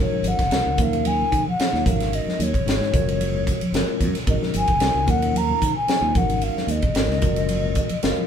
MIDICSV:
0, 0, Header, 1, 6, 480
1, 0, Start_track
1, 0, Tempo, 537153
1, 1905, Time_signature, 4, 2, 24, 8
1, 7389, End_track
2, 0, Start_track
2, 0, Title_t, "Flute"
2, 0, Program_c, 0, 73
2, 16, Note_on_c, 0, 73, 85
2, 249, Note_on_c, 0, 78, 88
2, 262, Note_off_c, 0, 73, 0
2, 730, Note_on_c, 0, 77, 89
2, 744, Note_off_c, 0, 78, 0
2, 957, Note_on_c, 0, 80, 86
2, 970, Note_off_c, 0, 77, 0
2, 1318, Note_off_c, 0, 80, 0
2, 1334, Note_on_c, 0, 78, 89
2, 1652, Note_off_c, 0, 78, 0
2, 1677, Note_on_c, 0, 77, 81
2, 1923, Note_on_c, 0, 75, 88
2, 1936, Note_off_c, 0, 77, 0
2, 2169, Note_on_c, 0, 73, 85
2, 2183, Note_off_c, 0, 75, 0
2, 3598, Note_off_c, 0, 73, 0
2, 3844, Note_on_c, 0, 75, 80
2, 3898, Note_off_c, 0, 75, 0
2, 4091, Note_on_c, 0, 80, 101
2, 4558, Note_on_c, 0, 78, 88
2, 4571, Note_off_c, 0, 80, 0
2, 4802, Note_on_c, 0, 82, 95
2, 4815, Note_off_c, 0, 78, 0
2, 5144, Note_off_c, 0, 82, 0
2, 5149, Note_on_c, 0, 80, 95
2, 5516, Note_on_c, 0, 78, 85
2, 5530, Note_off_c, 0, 80, 0
2, 5749, Note_on_c, 0, 77, 87
2, 5762, Note_off_c, 0, 78, 0
2, 5994, Note_on_c, 0, 75, 84
2, 6007, Note_off_c, 0, 77, 0
2, 7389, Note_off_c, 0, 75, 0
2, 7389, End_track
3, 0, Start_track
3, 0, Title_t, "Tine electric piano"
3, 0, Program_c, 1, 4
3, 0, Note_on_c, 1, 56, 76
3, 0, Note_on_c, 1, 61, 71
3, 0, Note_on_c, 1, 63, 67
3, 0, Note_on_c, 1, 66, 68
3, 0, Note_on_c, 1, 70, 81
3, 359, Note_off_c, 1, 56, 0
3, 363, Note_off_c, 1, 61, 0
3, 363, Note_off_c, 1, 63, 0
3, 363, Note_off_c, 1, 66, 0
3, 363, Note_off_c, 1, 70, 0
3, 469, Note_on_c, 1, 61, 63
3, 473, Note_on_c, 1, 63, 65
3, 474, Note_on_c, 1, 56, 69
3, 476, Note_on_c, 1, 66, 63
3, 476, Note_on_c, 1, 70, 77
3, 702, Note_off_c, 1, 61, 0
3, 708, Note_off_c, 1, 63, 0
3, 709, Note_off_c, 1, 56, 0
3, 710, Note_off_c, 1, 66, 0
3, 710, Note_off_c, 1, 70, 0
3, 713, Note_on_c, 1, 61, 62
3, 717, Note_on_c, 1, 54, 65
3, 718, Note_on_c, 1, 63, 59
3, 718, Note_on_c, 1, 65, 57
3, 721, Note_on_c, 1, 70, 75
3, 1291, Note_off_c, 1, 61, 0
3, 1293, Note_off_c, 1, 54, 0
3, 1293, Note_off_c, 1, 65, 0
3, 1294, Note_off_c, 1, 63, 0
3, 1295, Note_off_c, 1, 70, 0
3, 1423, Note_on_c, 1, 61, 64
3, 1424, Note_on_c, 1, 54, 69
3, 1427, Note_on_c, 1, 65, 64
3, 1429, Note_on_c, 1, 63, 68
3, 1429, Note_on_c, 1, 73, 84
3, 1655, Note_off_c, 1, 61, 0
3, 1656, Note_off_c, 1, 63, 0
3, 1662, Note_on_c, 1, 56, 69
3, 1664, Note_off_c, 1, 54, 0
3, 1666, Note_off_c, 1, 65, 0
3, 1666, Note_on_c, 1, 61, 63
3, 1667, Note_off_c, 1, 73, 0
3, 1667, Note_on_c, 1, 63, 63
3, 1667, Note_on_c, 1, 66, 64
3, 1667, Note_on_c, 1, 70, 76
3, 2246, Note_off_c, 1, 56, 0
3, 2248, Note_off_c, 1, 61, 0
3, 2249, Note_off_c, 1, 63, 0
3, 2249, Note_off_c, 1, 66, 0
3, 2249, Note_off_c, 1, 70, 0
3, 2377, Note_on_c, 1, 56, 73
3, 2379, Note_on_c, 1, 61, 66
3, 2383, Note_on_c, 1, 63, 66
3, 2387, Note_on_c, 1, 66, 67
3, 2387, Note_on_c, 1, 73, 82
3, 2607, Note_off_c, 1, 56, 0
3, 2611, Note_off_c, 1, 61, 0
3, 2615, Note_off_c, 1, 66, 0
3, 2617, Note_on_c, 1, 56, 68
3, 2621, Note_on_c, 1, 61, 58
3, 2624, Note_off_c, 1, 63, 0
3, 2626, Note_on_c, 1, 66, 59
3, 2626, Note_on_c, 1, 70, 70
3, 2627, Note_off_c, 1, 73, 0
3, 2627, Note_on_c, 1, 65, 59
3, 3204, Note_off_c, 1, 56, 0
3, 3206, Note_off_c, 1, 61, 0
3, 3208, Note_off_c, 1, 66, 0
3, 3208, Note_off_c, 1, 70, 0
3, 3209, Note_off_c, 1, 65, 0
3, 3335, Note_on_c, 1, 56, 82
3, 3340, Note_on_c, 1, 65, 78
3, 3341, Note_on_c, 1, 61, 81
3, 3343, Note_on_c, 1, 66, 76
3, 3347, Note_on_c, 1, 70, 92
3, 3716, Note_off_c, 1, 56, 0
3, 3719, Note_off_c, 1, 61, 0
3, 3719, Note_off_c, 1, 65, 0
3, 3720, Note_off_c, 1, 66, 0
3, 3722, Note_off_c, 1, 70, 0
3, 3818, Note_on_c, 1, 61, 73
3, 3820, Note_on_c, 1, 63, 71
3, 3821, Note_on_c, 1, 66, 71
3, 3825, Note_on_c, 1, 56, 78
3, 3828, Note_on_c, 1, 70, 82
3, 4197, Note_off_c, 1, 61, 0
3, 4198, Note_off_c, 1, 63, 0
3, 4199, Note_off_c, 1, 66, 0
3, 4201, Note_off_c, 1, 56, 0
3, 4202, Note_off_c, 1, 70, 0
3, 4294, Note_on_c, 1, 56, 73
3, 4294, Note_on_c, 1, 61, 67
3, 4300, Note_on_c, 1, 63, 70
3, 4300, Note_on_c, 1, 70, 79
3, 4302, Note_on_c, 1, 66, 70
3, 4528, Note_off_c, 1, 61, 0
3, 4535, Note_off_c, 1, 63, 0
3, 4535, Note_off_c, 1, 70, 0
3, 4538, Note_on_c, 1, 54, 70
3, 4539, Note_on_c, 1, 61, 67
3, 4540, Note_off_c, 1, 56, 0
3, 4544, Note_off_c, 1, 66, 0
3, 4545, Note_on_c, 1, 65, 63
3, 4546, Note_on_c, 1, 63, 62
3, 4546, Note_on_c, 1, 70, 73
3, 5124, Note_off_c, 1, 54, 0
3, 5124, Note_off_c, 1, 61, 0
3, 5127, Note_off_c, 1, 65, 0
3, 5127, Note_off_c, 1, 70, 0
3, 5128, Note_off_c, 1, 63, 0
3, 5254, Note_on_c, 1, 54, 72
3, 5256, Note_on_c, 1, 63, 68
3, 5258, Note_on_c, 1, 61, 68
3, 5261, Note_on_c, 1, 72, 84
3, 5263, Note_on_c, 1, 65, 66
3, 5483, Note_off_c, 1, 61, 0
3, 5485, Note_off_c, 1, 63, 0
3, 5494, Note_on_c, 1, 61, 66
3, 5495, Note_on_c, 1, 56, 75
3, 5496, Note_on_c, 1, 63, 69
3, 5500, Note_off_c, 1, 54, 0
3, 5500, Note_on_c, 1, 66, 67
3, 5501, Note_on_c, 1, 70, 75
3, 5503, Note_off_c, 1, 72, 0
3, 5504, Note_off_c, 1, 65, 0
3, 6081, Note_off_c, 1, 56, 0
3, 6081, Note_off_c, 1, 61, 0
3, 6082, Note_off_c, 1, 63, 0
3, 6084, Note_off_c, 1, 66, 0
3, 6084, Note_off_c, 1, 70, 0
3, 6214, Note_on_c, 1, 63, 66
3, 6215, Note_on_c, 1, 61, 64
3, 6217, Note_on_c, 1, 56, 73
3, 6221, Note_on_c, 1, 66, 66
3, 6224, Note_on_c, 1, 70, 77
3, 6442, Note_off_c, 1, 61, 0
3, 6444, Note_off_c, 1, 56, 0
3, 6445, Note_off_c, 1, 66, 0
3, 6451, Note_off_c, 1, 70, 0
3, 6453, Note_on_c, 1, 61, 63
3, 6454, Note_on_c, 1, 56, 63
3, 6456, Note_on_c, 1, 65, 61
3, 6456, Note_on_c, 1, 66, 60
3, 6458, Note_off_c, 1, 63, 0
3, 6462, Note_on_c, 1, 70, 70
3, 6942, Note_on_c, 1, 75, 66
3, 7039, Note_off_c, 1, 61, 0
3, 7040, Note_off_c, 1, 56, 0
3, 7041, Note_off_c, 1, 65, 0
3, 7041, Note_off_c, 1, 66, 0
3, 7044, Note_off_c, 1, 70, 0
3, 7165, Note_off_c, 1, 75, 0
3, 7175, Note_on_c, 1, 61, 78
3, 7175, Note_on_c, 1, 65, 77
3, 7176, Note_on_c, 1, 56, 88
3, 7177, Note_on_c, 1, 66, 79
3, 7177, Note_on_c, 1, 70, 94
3, 7178, Note_on_c, 1, 77, 64
3, 7389, Note_off_c, 1, 56, 0
3, 7389, Note_off_c, 1, 61, 0
3, 7389, Note_off_c, 1, 65, 0
3, 7389, Note_off_c, 1, 66, 0
3, 7389, Note_off_c, 1, 70, 0
3, 7389, Note_off_c, 1, 77, 0
3, 7389, End_track
4, 0, Start_track
4, 0, Title_t, "Fingered electric bass"
4, 0, Program_c, 2, 33
4, 204, Note_on_c, 2, 32, 78
4, 317, Note_off_c, 2, 32, 0
4, 346, Note_on_c, 2, 30, 74
4, 440, Note_off_c, 2, 30, 0
4, 451, Note_on_c, 2, 36, 83
4, 561, Note_off_c, 2, 36, 0
4, 589, Note_on_c, 2, 37, 77
4, 682, Note_off_c, 2, 37, 0
4, 697, Note_on_c, 2, 39, 87
4, 1096, Note_off_c, 2, 39, 0
4, 1177, Note_on_c, 2, 51, 80
4, 1285, Note_off_c, 2, 51, 0
4, 1546, Note_on_c, 2, 39, 78
4, 1641, Note_off_c, 2, 39, 0
4, 1656, Note_on_c, 2, 32, 86
4, 1963, Note_off_c, 2, 32, 0
4, 2140, Note_on_c, 2, 39, 82
4, 2248, Note_off_c, 2, 39, 0
4, 2265, Note_on_c, 2, 32, 84
4, 2361, Note_off_c, 2, 32, 0
4, 2374, Note_on_c, 2, 32, 84
4, 2484, Note_off_c, 2, 32, 0
4, 2504, Note_on_c, 2, 44, 85
4, 2601, Note_off_c, 2, 44, 0
4, 2619, Note_on_c, 2, 30, 94
4, 3123, Note_off_c, 2, 30, 0
4, 3326, Note_on_c, 2, 30, 76
4, 3440, Note_off_c, 2, 30, 0
4, 3577, Note_on_c, 2, 42, 81
4, 3686, Note_off_c, 2, 42, 0
4, 3813, Note_on_c, 2, 32, 96
4, 3923, Note_off_c, 2, 32, 0
4, 4062, Note_on_c, 2, 32, 85
4, 4169, Note_off_c, 2, 32, 0
4, 4184, Note_on_c, 2, 30, 81
4, 4281, Note_off_c, 2, 30, 0
4, 4300, Note_on_c, 2, 36, 84
4, 4408, Note_off_c, 2, 36, 0
4, 4421, Note_on_c, 2, 37, 79
4, 4519, Note_off_c, 2, 37, 0
4, 4534, Note_on_c, 2, 39, 94
4, 4935, Note_off_c, 2, 39, 0
4, 5017, Note_on_c, 2, 51, 86
4, 5126, Note_off_c, 2, 51, 0
4, 5373, Note_on_c, 2, 39, 81
4, 5474, Note_off_c, 2, 39, 0
4, 5495, Note_on_c, 2, 32, 88
4, 5802, Note_off_c, 2, 32, 0
4, 5962, Note_on_c, 2, 39, 77
4, 6076, Note_off_c, 2, 39, 0
4, 6096, Note_on_c, 2, 32, 80
4, 6195, Note_off_c, 2, 32, 0
4, 6202, Note_on_c, 2, 32, 84
4, 6316, Note_off_c, 2, 32, 0
4, 6325, Note_on_c, 2, 37, 88
4, 6429, Note_off_c, 2, 37, 0
4, 6456, Note_on_c, 2, 30, 91
4, 6960, Note_off_c, 2, 30, 0
4, 7182, Note_on_c, 2, 30, 78
4, 7287, Note_off_c, 2, 30, 0
4, 7389, End_track
5, 0, Start_track
5, 0, Title_t, "Muted fingered electric bass strokes"
5, 90, Note_on_c, 9, 29, 32
5, 180, Note_off_c, 9, 29, 0
5, 1423, Note_on_c, 9, 29, 30
5, 1512, Note_off_c, 9, 29, 0
5, 2017, Note_on_c, 9, 29, 34
5, 2106, Note_off_c, 9, 29, 0
5, 3231, Note_on_c, 9, 29, 33
5, 3320, Note_off_c, 9, 29, 0
5, 3466, Note_on_c, 9, 29, 33
5, 3555, Note_off_c, 9, 29, 0
5, 3702, Note_on_c, 9, 29, 34
5, 3792, Note_off_c, 9, 29, 0
5, 3951, Note_on_c, 9, 29, 35
5, 4040, Note_off_c, 9, 29, 0
5, 5251, Note_on_c, 9, 29, 33
5, 5340, Note_off_c, 9, 29, 0
5, 5859, Note_on_c, 9, 29, 35
5, 5949, Note_off_c, 9, 29, 0
5, 7058, Note_on_c, 9, 29, 34
5, 7147, Note_off_c, 9, 29, 0
5, 7299, Note_on_c, 9, 29, 32
5, 7388, Note_off_c, 9, 29, 0
5, 7389, End_track
6, 0, Start_track
6, 0, Title_t, "Drums"
6, 110, Note_on_c, 9, 63, 60
6, 200, Note_off_c, 9, 63, 0
6, 214, Note_on_c, 9, 44, 79
6, 214, Note_on_c, 9, 51, 59
6, 223, Note_on_c, 9, 63, 58
6, 304, Note_off_c, 9, 44, 0
6, 304, Note_off_c, 9, 51, 0
6, 312, Note_off_c, 9, 63, 0
6, 347, Note_on_c, 9, 36, 69
6, 348, Note_on_c, 9, 51, 59
6, 358, Note_on_c, 9, 38, 29
6, 437, Note_off_c, 9, 36, 0
6, 437, Note_off_c, 9, 51, 0
6, 448, Note_off_c, 9, 38, 0
6, 457, Note_on_c, 9, 51, 69
6, 468, Note_on_c, 9, 38, 94
6, 546, Note_off_c, 9, 51, 0
6, 557, Note_off_c, 9, 38, 0
6, 696, Note_on_c, 9, 44, 76
6, 696, Note_on_c, 9, 51, 55
6, 699, Note_on_c, 9, 64, 64
6, 700, Note_on_c, 9, 36, 99
6, 786, Note_off_c, 9, 44, 0
6, 786, Note_off_c, 9, 51, 0
6, 788, Note_off_c, 9, 64, 0
6, 790, Note_off_c, 9, 36, 0
6, 832, Note_on_c, 9, 51, 53
6, 921, Note_off_c, 9, 51, 0
6, 939, Note_on_c, 9, 51, 75
6, 946, Note_on_c, 9, 63, 59
6, 1028, Note_off_c, 9, 51, 0
6, 1036, Note_off_c, 9, 63, 0
6, 1076, Note_on_c, 9, 64, 58
6, 1165, Note_off_c, 9, 64, 0
6, 1182, Note_on_c, 9, 36, 74
6, 1185, Note_on_c, 9, 44, 71
6, 1185, Note_on_c, 9, 51, 53
6, 1272, Note_off_c, 9, 36, 0
6, 1274, Note_off_c, 9, 44, 0
6, 1274, Note_off_c, 9, 51, 0
6, 1318, Note_on_c, 9, 63, 62
6, 1408, Note_off_c, 9, 63, 0
6, 1425, Note_on_c, 9, 51, 70
6, 1436, Note_on_c, 9, 38, 98
6, 1515, Note_off_c, 9, 51, 0
6, 1526, Note_off_c, 9, 38, 0
6, 1561, Note_on_c, 9, 38, 31
6, 1651, Note_off_c, 9, 38, 0
6, 1662, Note_on_c, 9, 36, 92
6, 1663, Note_on_c, 9, 63, 64
6, 1663, Note_on_c, 9, 64, 63
6, 1665, Note_on_c, 9, 44, 79
6, 1665, Note_on_c, 9, 51, 56
6, 1751, Note_off_c, 9, 36, 0
6, 1752, Note_off_c, 9, 63, 0
6, 1752, Note_off_c, 9, 64, 0
6, 1755, Note_off_c, 9, 44, 0
6, 1755, Note_off_c, 9, 51, 0
6, 1791, Note_on_c, 9, 51, 57
6, 1801, Note_on_c, 9, 38, 30
6, 1880, Note_off_c, 9, 51, 0
6, 1891, Note_off_c, 9, 38, 0
6, 1905, Note_on_c, 9, 51, 72
6, 1994, Note_off_c, 9, 51, 0
6, 2028, Note_on_c, 9, 63, 66
6, 2046, Note_on_c, 9, 38, 30
6, 2117, Note_off_c, 9, 63, 0
6, 2135, Note_off_c, 9, 38, 0
6, 2144, Note_on_c, 9, 44, 79
6, 2144, Note_on_c, 9, 51, 59
6, 2151, Note_on_c, 9, 63, 62
6, 2233, Note_off_c, 9, 44, 0
6, 2233, Note_off_c, 9, 51, 0
6, 2240, Note_off_c, 9, 63, 0
6, 2271, Note_on_c, 9, 36, 72
6, 2278, Note_on_c, 9, 51, 54
6, 2360, Note_off_c, 9, 36, 0
6, 2367, Note_off_c, 9, 51, 0
6, 2392, Note_on_c, 9, 51, 70
6, 2403, Note_on_c, 9, 38, 89
6, 2482, Note_off_c, 9, 51, 0
6, 2492, Note_off_c, 9, 38, 0
6, 2525, Note_on_c, 9, 38, 28
6, 2614, Note_off_c, 9, 38, 0
6, 2624, Note_on_c, 9, 36, 95
6, 2625, Note_on_c, 9, 44, 80
6, 2625, Note_on_c, 9, 51, 59
6, 2625, Note_on_c, 9, 64, 69
6, 2713, Note_off_c, 9, 36, 0
6, 2714, Note_off_c, 9, 44, 0
6, 2714, Note_off_c, 9, 51, 0
6, 2715, Note_off_c, 9, 64, 0
6, 2757, Note_on_c, 9, 51, 55
6, 2847, Note_off_c, 9, 51, 0
6, 2863, Note_on_c, 9, 63, 62
6, 2866, Note_on_c, 9, 51, 77
6, 2952, Note_off_c, 9, 63, 0
6, 2956, Note_off_c, 9, 51, 0
6, 2990, Note_on_c, 9, 64, 58
6, 3080, Note_off_c, 9, 64, 0
6, 3101, Note_on_c, 9, 36, 74
6, 3103, Note_on_c, 9, 44, 75
6, 3103, Note_on_c, 9, 51, 62
6, 3190, Note_off_c, 9, 36, 0
6, 3192, Note_off_c, 9, 44, 0
6, 3192, Note_off_c, 9, 51, 0
6, 3228, Note_on_c, 9, 51, 58
6, 3238, Note_on_c, 9, 63, 67
6, 3317, Note_off_c, 9, 51, 0
6, 3327, Note_off_c, 9, 63, 0
6, 3343, Note_on_c, 9, 51, 74
6, 3353, Note_on_c, 9, 38, 97
6, 3432, Note_off_c, 9, 51, 0
6, 3443, Note_off_c, 9, 38, 0
6, 3579, Note_on_c, 9, 36, 72
6, 3579, Note_on_c, 9, 44, 75
6, 3579, Note_on_c, 9, 51, 60
6, 3584, Note_on_c, 9, 64, 71
6, 3668, Note_off_c, 9, 44, 0
6, 3668, Note_off_c, 9, 51, 0
6, 3669, Note_off_c, 9, 36, 0
6, 3673, Note_off_c, 9, 64, 0
6, 3708, Note_on_c, 9, 51, 64
6, 3719, Note_on_c, 9, 38, 31
6, 3798, Note_off_c, 9, 51, 0
6, 3808, Note_off_c, 9, 38, 0
6, 3817, Note_on_c, 9, 51, 83
6, 3818, Note_on_c, 9, 36, 98
6, 3906, Note_off_c, 9, 51, 0
6, 3907, Note_off_c, 9, 36, 0
6, 3950, Note_on_c, 9, 63, 66
6, 3957, Note_on_c, 9, 38, 31
6, 4039, Note_off_c, 9, 63, 0
6, 4046, Note_off_c, 9, 38, 0
6, 4054, Note_on_c, 9, 44, 80
6, 4054, Note_on_c, 9, 51, 61
6, 4060, Note_on_c, 9, 63, 68
6, 4144, Note_off_c, 9, 44, 0
6, 4144, Note_off_c, 9, 51, 0
6, 4149, Note_off_c, 9, 63, 0
6, 4178, Note_on_c, 9, 51, 56
6, 4184, Note_on_c, 9, 36, 71
6, 4267, Note_off_c, 9, 51, 0
6, 4273, Note_off_c, 9, 36, 0
6, 4291, Note_on_c, 9, 51, 75
6, 4302, Note_on_c, 9, 38, 89
6, 4380, Note_off_c, 9, 51, 0
6, 4391, Note_off_c, 9, 38, 0
6, 4528, Note_on_c, 9, 64, 74
6, 4535, Note_on_c, 9, 44, 77
6, 4535, Note_on_c, 9, 51, 57
6, 4538, Note_on_c, 9, 36, 94
6, 4617, Note_off_c, 9, 64, 0
6, 4624, Note_off_c, 9, 44, 0
6, 4624, Note_off_c, 9, 51, 0
6, 4627, Note_off_c, 9, 36, 0
6, 4667, Note_on_c, 9, 51, 59
6, 4757, Note_off_c, 9, 51, 0
6, 4776, Note_on_c, 9, 63, 62
6, 4789, Note_on_c, 9, 51, 77
6, 4866, Note_off_c, 9, 63, 0
6, 4879, Note_off_c, 9, 51, 0
6, 4909, Note_on_c, 9, 64, 63
6, 4998, Note_off_c, 9, 64, 0
6, 5020, Note_on_c, 9, 36, 70
6, 5022, Note_on_c, 9, 44, 78
6, 5022, Note_on_c, 9, 51, 55
6, 5110, Note_off_c, 9, 36, 0
6, 5112, Note_off_c, 9, 44, 0
6, 5112, Note_off_c, 9, 51, 0
6, 5257, Note_on_c, 9, 51, 69
6, 5268, Note_on_c, 9, 38, 96
6, 5347, Note_off_c, 9, 51, 0
6, 5357, Note_off_c, 9, 38, 0
6, 5495, Note_on_c, 9, 44, 73
6, 5495, Note_on_c, 9, 51, 56
6, 5498, Note_on_c, 9, 36, 96
6, 5502, Note_on_c, 9, 63, 60
6, 5502, Note_on_c, 9, 64, 70
6, 5585, Note_off_c, 9, 44, 0
6, 5585, Note_off_c, 9, 51, 0
6, 5588, Note_off_c, 9, 36, 0
6, 5592, Note_off_c, 9, 63, 0
6, 5592, Note_off_c, 9, 64, 0
6, 5626, Note_on_c, 9, 51, 56
6, 5715, Note_off_c, 9, 51, 0
6, 5733, Note_on_c, 9, 51, 70
6, 5822, Note_off_c, 9, 51, 0
6, 5874, Note_on_c, 9, 63, 65
6, 5875, Note_on_c, 9, 38, 31
6, 5963, Note_off_c, 9, 63, 0
6, 5964, Note_off_c, 9, 38, 0
6, 5972, Note_on_c, 9, 44, 83
6, 5972, Note_on_c, 9, 51, 54
6, 5983, Note_on_c, 9, 63, 63
6, 6061, Note_off_c, 9, 44, 0
6, 6061, Note_off_c, 9, 51, 0
6, 6073, Note_off_c, 9, 63, 0
6, 6097, Note_on_c, 9, 51, 53
6, 6101, Note_on_c, 9, 36, 73
6, 6187, Note_off_c, 9, 51, 0
6, 6191, Note_off_c, 9, 36, 0
6, 6209, Note_on_c, 9, 51, 71
6, 6220, Note_on_c, 9, 38, 99
6, 6298, Note_off_c, 9, 51, 0
6, 6309, Note_off_c, 9, 38, 0
6, 6350, Note_on_c, 9, 38, 27
6, 6440, Note_off_c, 9, 38, 0
6, 6448, Note_on_c, 9, 44, 77
6, 6448, Note_on_c, 9, 51, 53
6, 6454, Note_on_c, 9, 36, 90
6, 6454, Note_on_c, 9, 64, 67
6, 6537, Note_off_c, 9, 44, 0
6, 6537, Note_off_c, 9, 51, 0
6, 6544, Note_off_c, 9, 36, 0
6, 6544, Note_off_c, 9, 64, 0
6, 6579, Note_on_c, 9, 51, 56
6, 6668, Note_off_c, 9, 51, 0
6, 6690, Note_on_c, 9, 51, 80
6, 6694, Note_on_c, 9, 63, 64
6, 6779, Note_off_c, 9, 51, 0
6, 6783, Note_off_c, 9, 63, 0
6, 6827, Note_on_c, 9, 64, 62
6, 6916, Note_off_c, 9, 64, 0
6, 6927, Note_on_c, 9, 44, 77
6, 6927, Note_on_c, 9, 51, 57
6, 6934, Note_on_c, 9, 36, 71
6, 7016, Note_off_c, 9, 44, 0
6, 7016, Note_off_c, 9, 51, 0
6, 7023, Note_off_c, 9, 36, 0
6, 7054, Note_on_c, 9, 51, 57
6, 7063, Note_on_c, 9, 63, 65
6, 7143, Note_off_c, 9, 51, 0
6, 7152, Note_off_c, 9, 63, 0
6, 7173, Note_on_c, 9, 51, 69
6, 7183, Note_on_c, 9, 38, 99
6, 7262, Note_off_c, 9, 51, 0
6, 7273, Note_off_c, 9, 38, 0
6, 7314, Note_on_c, 9, 63, 47
6, 7389, Note_off_c, 9, 63, 0
6, 7389, End_track
0, 0, End_of_file